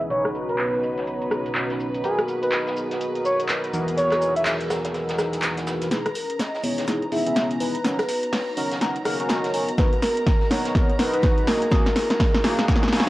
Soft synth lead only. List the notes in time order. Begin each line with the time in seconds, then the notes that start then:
5.91 B4
6.15 A#4
6.40 D#5
6.64 C#5
7.12 E5
7.60 B4
9.78 B4
10.02 A#4
10.51 C#5
10.99 B4
11.48 A#4